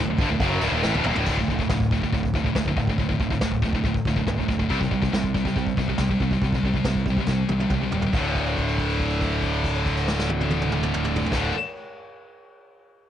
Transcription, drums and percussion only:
0.18 kick, crash
0.40 kick, crash
0.61 crash
0.83 snare
0.94 high tom
1.04 mid tom
1.16 floor tom
1.26 kick, crash
1.38 kick
1.48 kick
1.59 kick
1.70 kick, snare
1.80 kick
1.91 kick
2.02 kick
2.12 kick, open hi-hat
2.23 kick
2.34 kick
2.45 kick
2.55 kick, snare
2.66 kick
2.77 kick
2.87 kick
2.97 kick, open hi-hat
3.09 kick
3.20 kick
3.30 kick
3.41 kick, snare
3.51 kick
3.62 kick
3.73 kick
3.84 kick, open hi-hat
3.94 kick
4.05 kick
4.16 kick
4.27 kick, snare
4.38 kick
4.49 kick
4.59 kick
4.70 kick, open hi-hat
4.81 kick
4.92 kick
5.03 kick
5.13 kick, snare
5.24 kick
5.35 kick
5.45 kick
5.56 kick, open hi-hat
5.67 kick
5.77 kick
5.88 kick
5.98 kick, snare, open hi-hat
6.09 kick
6.20 kick
6.31 kick
6.42 kick, open hi-hat
6.52 kick
6.63 kick
6.74 kick
6.84 kick, snare, open hi-hat
6.95 kick
7.06 kick
7.17 kick
7.26 kick, snare
7.49 high tom
7.60 high tom
7.70 kick, mid tom
7.92 floor tom
8.02 floor tom
8.13 kick, crash
8.35 kick, crash
8.46 crash
8.57 kick, crash
8.68 crash
8.78 kick, crash
8.89 crash
8.99 kick, crash
9.10 crash
9.21 kick, crash
9.31 crash
9.42 kick, crash
9.52 crash
9.64 kick, crash
9.75 crash
9.86 kick, crash
9.97 crash
10.08 snare
10.19 snare
10.29 high tom
10.40 high tom
10.50 high tom
10.61 mid tom
10.72 mid tom
10.83 mid tom
10.94 mid tom
11.04 mid tom
11.16 floor tom
11.26 floor tom
11.32 kick, snare, crash

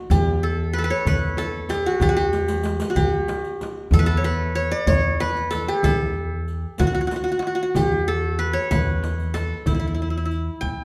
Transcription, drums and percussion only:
0.10 riq, darbuka dum, frame drum
0.75 riq
1.06 riq, frame drum, darbuka dum
1.37 riq, darbuka tek, frame drum
1.55 darbuka ka
1.69 riq, darbuka tek, frame drum
2.01 riq, frame drum, darbuka dum
2.33 riq, darbuka tek
2.48 riq, darbuka ka
2.63 riq, darbuka tek
2.80 riq, darbuka ka
2.96 riq, frame drum, darbuka dum
3.28 riq, darbuka tek, frame drum
3.44 riq, darbuka ka
3.61 riq, darbuka tek, frame drum
3.92 riq, frame drum, darbuka dum
4.57 riq
4.87 riq, frame drum, darbuka dum
5.20 riq, darbuka tek, frame drum
5.36 riq, darbuka ka
5.52 riq, darbuka tek, frame drum
5.84 riq, darbuka dum, frame drum
6.48 riq
6.78 riq, frame drum, darbuka dum
7.11 riq, darbuka tek, frame drum
7.27 riq, darbuka ka
7.42 darbuka tek
7.75 riq, darbuka dum, frame drum
8.40 riq
8.71 riq, darbuka dum, frame drum
9.03 riq, darbuka tek, frame drum
9.19 riq, darbuka ka
9.35 riq, darbuka tek, frame drum
9.66 riq, frame drum, darbuka dum
9.99 darbuka ka
10.31 riq, darbuka ka
10.62 frame drum

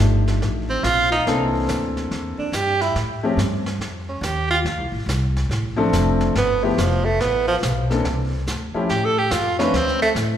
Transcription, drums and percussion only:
0.00 snare
0.27 snare
0.42 brush sweep, snare
0.84 snare, hi-hat pedal
1.12 snare
1.27 brush sweep, snare
1.69 snare, hi-hat pedal
1.97 snare
2.11 brush sweep, snare
2.53 snare, hi-hat pedal
2.81 snare
2.96 brush sweep, snare
3.38 snare, hi-hat pedal
3.66 snare
3.81 brush sweep, snare
4.23 snare, hi-hat pedal
4.66 brush sweep, snare
5.09 snare, hi-hat pedal
5.37 snare
5.51 brush sweep, snare
5.93 snare, hi-hat pedal
6.21 snare
6.35 brush sweep, snare
6.78 snare, hi-hat pedal
7.20 brush sweep, snare
7.63 snare, hi-hat pedal
7.91 snare
8.05 brush sweep, snare
8.47 snare, hi-hat pedal
8.89 brush sweep, snare
9.31 snare, hi-hat pedal
9.60 snare
9.74 brush sweep, snare
9.88 snare
10.02 snare
10.16 snare, hi-hat pedal

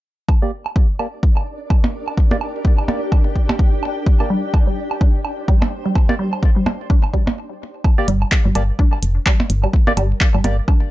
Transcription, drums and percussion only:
0.29 kick, low woodblock
0.66 low woodblock
0.76 kick
0.99 low woodblock
1.23 kick
1.37 low woodblock
1.70 kick, low woodblock
1.84 percussion blips
2.08 low woodblock
2.17 kick
2.31 percussion blips
2.41 low woodblock
2.65 kick
2.78 low woodblock
2.88 percussion blips
3.12 kick, low woodblock
3.36 kick
3.49 percussion blips, low woodblock
3.59 kick
3.83 low woodblock
4.06 kick
4.20 low woodblock
4.54 kick, low woodblock
4.91 low woodblock
5.01 kick
5.25 low woodblock
5.48 kick
5.62 percussion blips, low woodblock
5.95 kick, low woodblock
6.09 percussion blips
6.33 low woodblock
6.43 kick
6.66 percussion blips, low woodblock
6.90 kick
7.04 low woodblock
7.14 kick
7.27 percussion blips
7.84 kick, low woodblock
8.08 closed hi-hat
8.22 low woodblock
8.32 kick, clap
8.55 closed hi-hat, low woodblock
8.79 kick
8.93 low woodblock
9.03 closed hi-hat
9.26 kick, clap, low woodblock
9.40 percussion blips
9.50 closed hi-hat
9.64 low woodblock
9.73 kick
9.87 percussion blips
9.97 closed hi-hat, low woodblock
10.21 kick, clap
10.35 low woodblock
10.44 closed hi-hat, percussion blips
10.68 kick, low woodblock

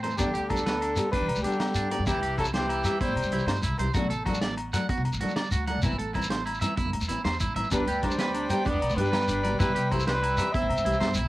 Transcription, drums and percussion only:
0.04 closed hi-hat, low conga, low agogo
0.10 shekere
0.18 kick, closed hi-hat, high conga, low agogo, shekere
0.27 low conga
0.34 closed hi-hat, shekere
0.50 kick, closed hi-hat, low conga, low agogo
0.56 shekere
0.66 snare, closed hi-hat, high conga
0.73 low conga
0.81 closed hi-hat, low agogo
0.96 closed hi-hat, low conga, low agogo, shekere
1.13 kick, closed hi-hat, high conga
1.21 low conga
1.28 closed hi-hat, low agogo
1.35 shekere
1.44 closed hi-hat
1.52 shekere
1.60 snare, closed hi-hat, high conga, low agogo
1.67 low conga, shekere
1.75 closed hi-hat, shekere
1.91 closed hi-hat, low conga, low agogo
2.06 kick, closed hi-hat, high conga, low agogo, shekere
2.15 low conga
2.23 closed hi-hat
2.38 kick, closed hi-hat, low agogo
2.45 shekere
2.54 snare, closed hi-hat, high conga
2.62 low conga
2.69 closed hi-hat, low agogo
2.84 snare, closed hi-hat, low conga, low agogo, shekere
3.01 kick, closed hi-hat, high conga
3.08 low conga
3.17 closed hi-hat, low agogo
3.23 shekere
3.32 closed hi-hat, low conga
3.39 shekere
3.48 snare, closed hi-hat, high conga, low agogo
3.55 low conga, shekere
3.63 closed hi-hat, shekere
3.79 closed hi-hat, low conga, low agogo
3.94 kick, closed hi-hat, high conga, low agogo, shekere
4.05 low conga
4.10 closed hi-hat, shekere
4.26 kick, closed hi-hat, low conga, low agogo
4.34 shekere
4.41 snare, closed hi-hat, high conga
4.51 low conga
4.57 closed hi-hat, low agogo
4.73 closed hi-hat, low conga, low agogo, shekere
4.89 kick, closed hi-hat, high conga
4.97 low conga
5.05 closed hi-hat, low agogo
5.13 shekere
5.20 closed hi-hat, low conga
5.28 shekere
5.36 snare, closed hi-hat, high conga, low agogo
5.44 low conga, shekere
5.51 closed hi-hat, shekere
5.67 closed hi-hat, low conga, low agogo
5.82 kick, closed hi-hat, high conga, low agogo, shekere
5.91 low conga
5.99 closed hi-hat
6.14 kick, closed hi-hat, low conga, low agogo
6.22 shekere
6.30 snare, closed hi-hat, high conga, low conga
6.39 low conga
6.46 closed hi-hat, low conga, low agogo
6.54 shekere
6.61 closed hi-hat, low conga, low agogo, shekere
6.77 kick, closed hi-hat, high conga
6.85 low conga
6.93 closed hi-hat, high conga, low agogo
7.01 shekere
7.09 closed hi-hat, high conga, shekere
7.25 snare, closed hi-hat, high conga, low agogo
7.32 shekere
7.40 kick, closed hi-hat, low conga, shekere
7.56 closed hi-hat, low conga, low agogo
7.64 shekere
7.71 kick, closed hi-hat, high conga, low agogo, shekere
7.80 low conga
7.87 closed hi-hat
8.03 kick, closed hi-hat, low conga, low agogo
8.11 shekere
8.18 snare, closed hi-hat, high conga
8.27 low conga
8.34 closed hi-hat, low agogo
8.49 closed hi-hat, low conga, low agogo, shekere
8.65 kick, closed hi-hat, high conga
8.73 low conga
8.82 closed hi-hat, low agogo
8.90 shekere
8.96 closed hi-hat, low conga
9.05 shekere
9.13 snare, closed hi-hat, high conga, low agogo
9.21 low conga, shekere
9.28 closed hi-hat, shekere
9.44 closed hi-hat, low conga, low agogo
9.60 kick, closed hi-hat, high conga, low agogo, shekere
9.69 low conga
9.76 closed hi-hat, shekere
9.91 kick, closed hi-hat, low conga, low agogo
10.00 shekere
10.07 snare, closed hi-hat, high conga
10.17 low conga
10.23 closed hi-hat, low agogo
10.37 snare, closed hi-hat, low conga, low agogo, shekere
10.54 kick, closed hi-hat, high conga
10.62 low conga
10.70 closed hi-hat, low agogo
10.77 shekere
10.86 closed hi-hat, low conga
10.93 shekere
11.01 snare, closed hi-hat, high conga, low agogo
11.08 low conga, shekere
11.14 closed hi-hat, shekere

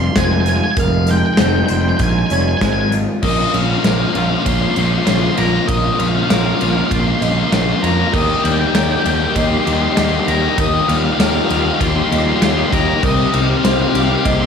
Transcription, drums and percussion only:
0.16 kick, snare, closed hi-hat
0.46 closed hi-hat
0.77 kick, closed hi-hat
1.07 closed hi-hat
1.37 snare, closed hi-hat
1.68 closed hi-hat
1.99 kick, closed hi-hat
2.30 closed hi-hat
2.61 kick, snare, closed hi-hat
2.92 closed hi-hat
3.23 kick, crash
3.54 ride
3.84 snare, ride
4.15 ride
4.46 kick, ride
4.76 ride
5.07 snare, ride
5.37 ride
5.69 kick, ride
6.00 ride
6.30 snare, ride
6.61 ride
6.91 kick, ride
7.22 ride
7.52 snare, ride
7.84 ride
8.14 kick, crash
8.45 ride
8.75 snare, ride
9.06 ride
9.36 kick, ride
9.67 ride
9.97 snare, ride
10.28 ride
10.58 kick, ride
10.89 ride
11.20 snare, ride
11.50 ride
11.81 kick, ride
12.12 ride
12.42 snare, ride
12.73 kick, ride
13.03 kick, crash
13.33 ride
13.65 snare, ride
13.95 ride
14.25 kick, ride

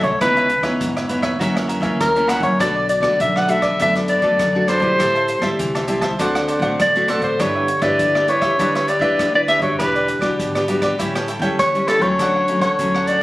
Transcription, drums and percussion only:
0.03 kick, closed hi-hat
0.21 kick, cross-stick, closed hi-hat
0.37 closed hi-hat
0.50 closed hi-hat
0.63 kick, cross-stick, closed hi-hat
0.81 kick, closed hi-hat
0.97 cross-stick, closed hi-hat
1.09 closed hi-hat
1.23 kick, cross-stick, closed hi-hat
1.41 kick, closed hi-hat
1.57 cross-stick, closed hi-hat
1.69 closed hi-hat
1.83 kick, closed hi-hat
2.00 kick, cross-stick, closed hi-hat
2.16 closed hi-hat
2.29 cross-stick, closed hi-hat
2.43 kick, closed hi-hat
2.60 kick, cross-stick, closed hi-hat
2.89 closed hi-hat
3.03 kick, cross-stick, closed hi-hat
3.20 kick, closed hi-hat
3.36 cross-stick
3.49 closed hi-hat
3.62 kick, cross-stick, closed hi-hat
3.80 kick, closed hi-hat
3.95 cross-stick, closed hi-hat
4.08 closed hi-hat
4.22 kick, closed hi-hat
4.39 kick, cross-stick, closed hi-hat
4.68 cross-stick, closed hi-hat
4.82 kick, closed hi-hat
5.00 kick, cross-stick, closed hi-hat
5.15 closed hi-hat
5.28 closed hi-hat
5.42 kick, cross-stick, closed hi-hat
5.59 kick, closed hi-hat
5.75 cross-stick, closed hi-hat
5.88 closed hi-hat
6.02 kick, cross-stick, closed hi-hat
6.19 kick, closed hi-hat
6.35 cross-stick, closed hi-hat
6.48 closed hi-hat
6.62 kick, closed hi-hat
6.80 kick, cross-stick, closed hi-hat
6.96 closed hi-hat
7.08 cross-stick, closed hi-hat
7.22 kick, closed hi-hat
7.39 kick, cross-stick, closed hi-hat
7.68 closed hi-hat
7.82 kick, cross-stick, closed hi-hat
7.99 kick, closed hi-hat
8.15 cross-stick
8.28 closed hi-hat
8.42 kick, cross-stick, closed hi-hat
8.59 kick, closed hi-hat
8.75 cross-stick, closed hi-hat
8.88 closed hi-hat
9.02 kick, closed hi-hat
9.19 kick, cross-stick, closed hi-hat
9.48 cross-stick, closed hi-hat
9.62 kick, closed hi-hat
9.79 kick, cross-stick, closed hi-hat
9.96 closed hi-hat
10.08 closed hi-hat
10.22 kick, cross-stick, closed hi-hat
10.39 kick, closed hi-hat
10.55 cross-stick, closed hi-hat
10.68 closed hi-hat
10.82 kick, cross-stick, closed hi-hat
10.99 kick, closed hi-hat
11.15 cross-stick, closed hi-hat
11.28 closed hi-hat
11.42 kick, closed hi-hat
11.59 kick, cross-stick, closed hi-hat
11.75 closed hi-hat
11.88 cross-stick, closed hi-hat
12.02 kick, closed hi-hat
12.19 kick, cross-stick, closed hi-hat
12.48 closed hi-hat
12.62 kick, cross-stick, closed hi-hat
12.79 kick, closed hi-hat
12.95 cross-stick
13.07 closed hi-hat

